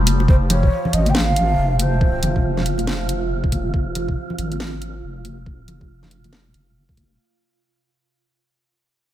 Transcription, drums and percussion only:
0.06 open hi-hat loud
0.06 high conga medium
0.20 muted conga medium
0.28 kick loud
0.50 closed hi-hat medium
0.50 low conga loud
0.63 kick medium
0.85 low conga medium
0.93 closed hi-hat medium
1.06 closed hi-hat soft
1.06 high conga medium
1.15 snare loud
1.36 closed hi-hat medium
1.79 closed hi-hat medium
1.79 high conga medium
2.01 kick loud
2.23 closed hi-hat medium
2.23 low conga loud
2.36 kick medium
2.57 snare soft
2.57 low conga medium
2.66 closed hi-hat medium
2.78 closed hi-hat soft
2.78 high conga medium
2.87 snare loud
3.09 closed hi-hat medium
3.44 kick loud
3.52 kick medium
3.52 closed hi-hat medium
3.52 high conga medium
3.74 kick loud
3.95 closed hi-hat medium
3.95 low conga medium
4.08 kick medium
4.30 low conga medium
4.38 closed hi-hat medium
4.52 closed hi-hat soft
4.52 high conga medium
4.60 snare loud
4.82 closed hi-hat medium
5.25 closed hi-hat medium
5.25 high conga medium
5.46 kick loud
5.68 closed hi-hat medium
5.68 low conga medium
5.81 kick medium
6.03 snare soft
6.03 low conga medium
6.11 closed hi-hat medium
6.24 closed hi-hat soft
6.24 high conga medium
6.24 low conga medium
6.33 snare loud
6.54 closed hi-hat medium
6.89 kick loud
6.97 kick medium
6.97 closed hi-hat medium
6.97 high conga medium

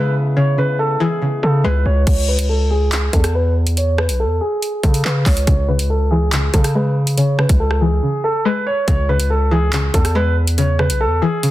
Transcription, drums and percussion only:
2.07 kick loud
2.07 closed hi-hat medium
2.07 crash medium
2.39 closed hi-hat medium
2.92 clap loud
2.92 closed hi-hat medium
3.13 kick loud
3.13 closed hi-hat medium
3.24 cross-stick loud
3.24 closed hi-hat medium
3.67 closed hi-hat medium
3.77 closed hi-hat medium
3.98 cross-stick loud
4.09 closed hi-hat medium
4.62 closed hi-hat medium
4.83 kick loud
4.83 closed hi-hat medium
4.94 closed hi-hat medium
5.05 clap loud
5.26 kick loud
5.26 clap medium
5.26 open hi-hat medium
5.37 closed hi-hat medium
5.47 kick loud
5.47 closed hi-hat medium
5.79 closed hi-hat medium
6.32 clap loud
6.32 closed hi-hat medium
6.54 kick loud
6.54 closed hi-hat medium
6.64 cross-stick medium
6.64 closed hi-hat medium
7.07 closed hi-hat medium
7.18 closed hi-hat medium
7.39 cross-stick loud
7.49 kick loud
7.49 closed hi-hat medium
7.71 cross-stick medium
8.88 kick loud
8.88 closed hi-hat medium
9.20 closed hi-hat medium
9.73 clap loud
9.73 closed hi-hat medium
9.94 kick medium
9.94 closed hi-hat medium
10.05 cross-stick medium
10.05 closed hi-hat medium
10.47 closed hi-hat medium
10.58 closed hi-hat medium
10.79 cross-stick medium
10.90 closed hi-hat medium
11.43 closed hi-hat medium

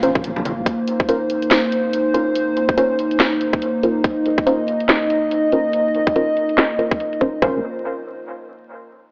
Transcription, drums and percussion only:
0.03 closed hi-hat medium
0.15 kick loud
0.24 closed hi-hat medium
0.36 low conga medium
0.45 closed hi-hat soft
0.45 high conga medium
0.66 kick loud
0.66 closed hi-hat medium
0.87 closed hi-hat soft
1.00 kick loud
1.09 closed hi-hat medium
1.30 closed hi-hat medium
1.42 closed hi-hat soft
1.51 snare loud
1.51 closed hi-hat medium
1.72 closed hi-hat medium
1.93 closed hi-hat medium
2.14 closed hi-hat medium
2.35 closed hi-hat medium
2.57 closed hi-hat soft
2.69 kick loud
2.78 closed hi-hat medium
2.99 closed hi-hat soft
3.11 closed hi-hat soft
3.20 snare loud
3.20 closed hi-hat medium
3.41 closed hi-hat medium
3.53 kick loud
3.62 closed hi-hat medium
3.83 closed hi-hat soft
4.04 kick loud
4.04 closed hi-hat medium
4.26 closed hi-hat medium
4.38 kick loud
4.47 closed hi-hat medium
4.68 closed hi-hat medium
4.80 closed hi-hat soft
4.89 snare loud
4.89 closed hi-hat medium
5.10 closed hi-hat medium
5.31 closed hi-hat medium
5.52 closed hi-hat medium
5.73 closed hi-hat medium
5.94 closed hi-hat soft
6.07 kick loud
6.16 closed hi-hat medium
6.37 closed hi-hat medium
6.49 closed hi-hat soft
6.58 snare loud
6.58 closed hi-hat medium
6.79 closed hi-hat medium
6.91 kick loud
7.00 closed hi-hat medium
7.13 closed hi-hat soft
7.21 kick medium
7.21 closed hi-hat medium
7.42 kick loud

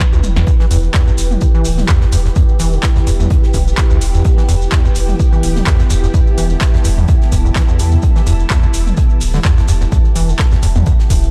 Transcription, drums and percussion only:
0.00 kick loud
0.00 snare medium
0.00 clap loud
0.00 maracas soft
0.13 high tom medium
0.13 maracas soft
0.24 mid tom medium
0.24 maracas medium
0.36 snare medium
0.36 maracas soft
0.47 kick loud
0.47 closed hi-hat medium
0.47 maracas medium
0.60 snare soft
0.60 maracas soft
0.71 closed hi-hat medium
0.71 open hi-hat loud
0.71 maracas medium
0.83 maracas soft
0.94 kick loud
0.94 snare loud
0.94 clap loud
0.94 closed hi-hat medium
0.94 maracas medium
1.07 maracas soft
1.18 closed hi-hat medium
1.18 open hi-hat loud
1.18 maracas medium
1.31 mid tom medium
1.31 maracas soft
1.41 kick loud
1.41 closed hi-hat medium
1.41 maracas medium
1.55 maracas soft
1.65 open hi-hat medium
1.65 open hi-hat loud
1.65 maracas medium
1.78 snare soft
1.78 mid tom medium
1.78 maracas soft
1.88 kick loud
1.88 snare loud
1.88 clap loud
1.88 closed hi-hat medium
1.88 maracas medium
2.01 snare soft
2.01 maracas soft
2.12 closed hi-hat medium
2.12 open hi-hat loud
2.12 maracas medium
2.25 snare soft
2.25 maracas soft
2.35 kick loud
2.35 closed hi-hat medium
2.35 maracas medium
2.49 maracas soft
2.59 closed hi-hat medium
2.59 open hi-hat loud
2.59 maracas medium
2.73 maracas soft
2.83 kick loud
2.83 snare loud
2.83 clap loud
2.83 closed hi-hat medium
2.83 maracas medium
2.96 snare soft
2.96 maracas soft
3.07 closed hi-hat medium
3.07 open hi-hat loud
3.07 maracas medium
3.20 mid tom medium
3.20 maracas soft
3.30 kick loud
3.30 closed hi-hat medium
3.30 maracas soft
3.43 snare soft
3.43 maracas soft
3.53 kick medium
3.53 closed hi-hat medium
3.53 open hi-hat loud
3.53 maracas medium
3.67 maracas soft
3.77 kick loud
3.77 snare loud
3.77 clap loud
3.77 closed hi-hat medium
3.77 maracas medium
3.90 maracas soft
4.01 closed hi-hat medium
4.01 open hi-hat loud
4.01 maracas loud
4.14 maracas soft
4.24 kick loud
4.24 closed hi-hat medium
4.24 maracas soft
4.38 snare soft
4.38 maracas soft
4.49 closed hi-hat medium
4.49 open hi-hat loud
4.49 maracas medium
4.62 maracas soft
4.72 kick loud
4.72 snare loud
4.72 clap loud
4.72 closed hi-hat medium
4.72 maracas medium
4.85 maracas soft
4.95 closed hi-hat medium
4.95 open hi-hat loud
4.95 maracas medium
5.09 mid tom medium
5.09 maracas soft
5.19 kick loud
5.19 closed hi-hat medium
5.19 maracas medium
5.33 maracas soft
5.43 open hi-hat loud
5.43 open hi-hat medium
5.43 maracas medium
5.56 snare soft
5.56 mid tom medium
5.56 maracas soft
5.67 kick loud
5.67 snare loud
5.67 clap loud
5.67 closed hi-hat medium
5.67 maracas soft
5.79 snare soft
5.79 maracas soft
5.90 closed hi-hat medium
5.90 open hi-hat loud
5.90 maracas loud
6.03 snare soft
6.03 maracas soft
6.14 kick loud
6.14 closed hi-hat medium
6.14 maracas medium
6.27 maracas soft
6.38 closed hi-hat medium
6.38 open hi-hat loud
6.38 maracas medium
6.50 maracas soft
6.61 kick loud
6.61 snare loud
6.61 clap loud
6.61 closed hi-hat medium
6.61 maracas soft
6.74 snare soft
6.74 maracas soft
6.85 closed hi-hat medium
6.85 open hi-hat loud
6.85 maracas medium
6.98 mid tom medium
6.98 maracas soft
7.08 kick loud
7.08 closed hi-hat medium
7.08 maracas soft
7.22 snare soft
7.22 maracas soft
7.32 kick medium
7.32 closed hi-hat medium
7.32 open hi-hat loud
7.32 maracas medium
7.45 maracas soft
7.56 kick loud
7.56 snare loud
7.56 clap loud
7.56 closed hi-hat medium
7.56 maracas soft
7.68 maracas soft
7.79 closed hi-hat medium
7.79 open hi-hat loud
7.79 maracas medium
7.92 maracas soft
8.02 kick loud
8.02 closed hi-hat medium
8.02 maracas soft
8.16 snare soft
8.16 maracas soft
8.26 closed hi-hat medium
8.26 open hi-hat loud
8.26 maracas medium
8.39 maracas soft
8.50 kick loud
8.50 snare loud
8.50 clap loud
8.50 closed hi-hat medium
8.50 maracas medium
8.63 maracas soft
8.74 closed hi-hat medium
8.74 open hi-hat loud
8.74 maracas medium
8.87 mid tom medium
8.87 maracas soft
8.97 kick loud
8.97 closed hi-hat medium
8.97 maracas soft
9.09 maracas soft
9.21 open hi-hat medium
9.21 open hi-hat loud
9.21 maracas medium
9.33 snare medium
9.33 mid tom medium
9.33 maracas soft
9.45 kick loud
9.45 snare loud
9.45 clap loud
9.45 closed hi-hat medium
9.45 maracas medium
9.58 snare soft
9.58 maracas soft
9.68 closed hi-hat medium
9.68 open hi-hat loud
9.68 maracas loud
9.80 snare soft
9.80 maracas soft
9.92 kick loud
9.92 closed hi-hat medium
9.92 maracas soft
10.05 maracas soft
10.15 closed hi-hat medium
10.15 open hi-hat loud
10.15 maracas medium
10.29 maracas soft
10.39 kick loud
10.39 snare loud
10.39 clap loud
10.39 closed hi-hat medium
10.39 maracas soft
10.51 snare soft
10.51 maracas soft
10.62 closed hi-hat medium
10.62 open hi-hat loud
10.62 maracas medium
10.75 mid tom medium
10.75 maracas soft
10.86 kick loud
10.86 closed hi-hat medium
10.86 maracas medium
10.99 snare soft
10.99 maracas soft
11.10 kick medium
11.10 closed hi-hat medium
11.10 open hi-hat loud
11.10 maracas medium
11.23 maracas soft

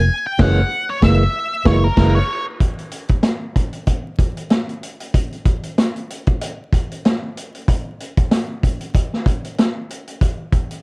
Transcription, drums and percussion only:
0.39 kick loud
0.39 snare loud
0.39 crash medium
1.02 kick loud
1.02 snare loud
1.66 kick loud
1.66 snare loud
1.97 kick loud
1.97 snare loud
1.97 crash medium
2.60 kick medium
2.60 closed hi-hat medium
2.79 closed hi-hat soft
2.91 closed hi-hat medium
3.08 kick medium
3.08 closed hi-hat soft
3.23 snare medium
3.23 closed hi-hat medium
3.56 kick medium
3.56 closed hi-hat medium
3.73 closed hi-hat soft
3.87 kick medium
3.87 closed hi-hat medium
4.19 kick medium
4.19 closed hi-hat medium
4.37 closed hi-hat soft
4.50 snare medium
4.50 closed hi-hat medium
4.69 closed hi-hat soft
4.83 closed hi-hat medium
5.00 closed hi-hat medium
5.14 kick medium
5.14 closed hi-hat medium
5.32 closed hi-hat soft
5.45 kick medium
5.45 closed hi-hat medium
5.63 closed hi-hat soft
5.78 snare medium
5.78 closed hi-hat medium
5.96 closed hi-hat soft
6.10 closed hi-hat medium
6.27 kick medium
6.27 closed hi-hat soft
6.41 closed hi-hat medium
6.73 kick medium
6.73 closed hi-hat medium
6.91 closed hi-hat soft
7.05 snare loud
7.05 closed hi-hat medium
7.37 closed hi-hat medium
7.55 closed hi-hat soft
7.68 kick medium
7.68 closed hi-hat medium
8.00 closed hi-hat medium
8.17 kick medium
8.17 closed hi-hat medium
8.31 snare medium
8.31 closed hi-hat medium
8.63 kick medium
8.63 closed hi-hat medium
8.81 closed hi-hat soft
8.95 kick medium
8.95 closed hi-hat medium
9.13 snare soft
9.26 kick medium
9.26 closed hi-hat medium
9.44 closed hi-hat soft
9.58 snare medium
9.58 closed hi-hat medium
9.90 closed hi-hat medium
10.07 closed hi-hat soft
10.21 kick medium
10.21 closed hi-hat medium
10.53 kick medium
10.53 closed hi-hat medium
10.71 closed hi-hat soft

